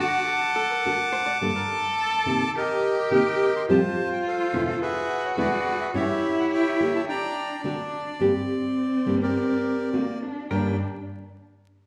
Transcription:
Already playing: F#4
0.00 D3 A3 D4 F#4 F#5 A5 D6
0.27 A4
0.56 A4
0.70 A#4
0.85 D3 A3 D4 F#4
1.13 C5
1.26 D5
1.41 G2 D3 G3 A#3 D4 A4
1.56 A#4
2.26 C3 D#3 A#3 C4 G4
2.56 G4 A#4 D#5
3.11 C3 D#3 A#3 C4 G4 A#4 D#5
3.15 G5
3.56 C6
3.69 F2 A2 F3 G3 C4 F4 G4 C5 A5
4.13 G5
4.27 A4 C5 F5
4.53 E2 B2 D3 G#3 B3 E4
4.70 F5
4.81 F#4 G#4 B4 E5
5.26 C#5
5.37 E2 B2 D3 G#3 B3 E4 G#4 B4 D5
5.81 E5
5.94 A2 E3 G3 C#4 E4 G4 C#5 E5
6.40 F#5
6.53 C#5 E5 G5
6.80 D3 A#3 D4 G4
6.96 A5
7.09 D4 D5 G5 A#5
7.64 D3 A3 C4 D4 F#4
8.20 G2 D3 G3 A#3 C4 D4 G4
9.06 G2 D3 G3 A#3 D4 G4
9.22 G4 A#4 D5
9.93 D3 A3 A#3 C4 F#4
10.23 D4
10.50 G2 D3 G3 A#3 D4 G4 A#4 G5

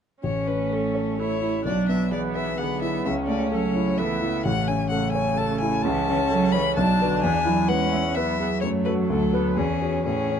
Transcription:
0.23 A1 A3 C#4 C#5
0.47 C#4 B4
0.70 A4
0.95 C#5
1.19 E4 A4 C#5
1.40 E4
1.65 B1 F#3 D4 D5
1.89 B3 E5
2.11 E3 B3 G#4 D5
2.35 B4 E5
2.58 D3 B3 G#4 F#5
2.82 E4 E5
3.05 C#2 C#3 C#4 E5
3.27 A3 D5
3.52 F#3 A4 C#5
3.76 E4
3.98 E3 B3 A4 E5
4.22 C#3 E4
4.45 A1 A3 F#5
4.67 C#4 G#5
4.90 C#3 A3 A4 F#5
5.12 C#5 G#5
5.37 A4 A5
5.60 E4 G#5
5.82 C#2 E3 C#4 A5
6.08 E3 C#4
6.31 F#3 A4
6.52 E3 C#5 B5
6.76 B1 F#3 D4 A5
7.01 D3 F#4 B4
7.22 E2 E3 G#5
7.45 F#3 E4
7.68 G#3 C#4 B4 F#5
7.92 G#3 E5
8.15 F#3 B3 B4 E5
8.39 B3 G#4
8.61 F#2 A3 C#5
8.85 F#4 A4 B4
9.08 D2 A3 A4
9.33 B3 F#4 B4
9.56 E2 E3 C#4 G#4
9.82 F#4 C#5
10.05 A2 E3 C#4 G#4
10.30 C#4

